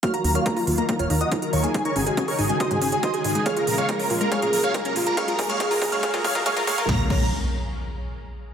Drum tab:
CC |----------------|----------------|----------------|----------------|
HH |xxoxxooxxxoxxxox|xxoxxooxxxoxxxox|xxoxxooxxxoxxxox|xxoxxooxxxoxxxox|
SD |----------------|----------------|----------------|----------------|
BD |o---o---o---o---|o---o---o---o---|o---o---o---o---|o-o-o-o-oooooooo|

CC |--x-------------|
HH |----------------|
SD |o---------------|
BD |o-o-------------|